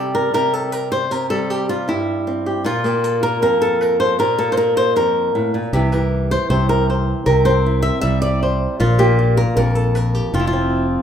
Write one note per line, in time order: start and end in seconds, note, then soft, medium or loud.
0.00 0.33 C3 medium
0.00 1.08 G3 medium
0.00 0.34 G4 medium
0.00 0.14 A4 medium
0.15 0.33 A#4 medium
0.34 1.09 C3 medium
0.34 0.54 A#4 medium
0.54 0.72 A4 medium
0.72 0.91 A#4 medium
0.92 1.11 C5 medium
1.11 1.88 C3 medium
1.11 1.30 A#4 loud
1.30 2.63 G3 medium
1.30 1.50 A4 medium
1.50 1.69 G4 medium
1.69 1.88 F4 medium
1.88 2.63 G2 medium
1.88 2.65 E4 medium
2.27 2.67 C4 medium
2.46 2.63 G4 soft
2.64 3.42 A#2 medium
2.64 3.22 F4 medium
2.84 4.17 A#3 medium
2.84 3.04 G4 medium
3.04 3.60 A4 medium
3.23 3.41 A#4 medium
3.42 4.19 F2 medium
3.42 3.80 A#4 medium
3.62 4.19 A4 loud
3.81 3.99 A#4 medium
4.00 4.19 C5 medium
4.19 4.96 A#2 medium
4.19 4.52 A#4 medium
4.38 5.71 A#3 medium
4.38 4.91 A4 medium
4.52 4.57 C5 medium
4.57 4.77 A#4 medium
4.77 4.96 C5 medium
4.96 5.34 F2 medium
4.96 5.73 A#4 medium
5.35 5.54 A2 medium
5.54 5.73 A#2 medium
5.73 6.36 C2 medium
5.73 5.93 C3 medium
5.73 5.92 E3 medium
5.73 7.25 E4 soft
5.73 6.31 G4 medium
5.92 7.25 E3 medium
5.92 6.31 A#4 medium
6.31 6.49 C5 medium
6.50 7.13 C2 medium
6.50 7.24 C3 medium
6.50 6.69 C5 medium
6.69 6.88 A#4 medium
6.90 7.29 C5 soft
7.26 7.89 C2 medium
7.26 8.78 C3 medium
7.26 7.84 A#4 medium
7.45 8.83 C4 medium
7.45 7.82 C5 medium
7.66 8.79 E4 soft
7.82 8.00 E5 loud
8.01 8.66 C2 medium
8.01 8.78 G3 medium
8.01 8.21 E5 medium
8.22 8.41 D5 medium
8.43 8.80 C5 soft
8.80 9.43 A#1 medium
8.80 9.57 A#2 medium
8.80 9.17 F4 medium
8.99 10.31 A#3 medium
8.99 9.37 G4 loud
9.37 9.55 A#4 loud
9.56 10.20 A#1 medium
9.56 10.33 F2 medium
9.56 9.75 A#4 loud
9.75 9.95 A4 loud
9.95 10.15 A#4 loud
10.15 10.34 G4 medium
10.33 10.96 F1 medium
10.33 11.02 F2 medium
10.33 10.46 F4 medium
10.40 10.85 E4 medium
10.47 11.02 F4 medium
10.53 11.02 C4 medium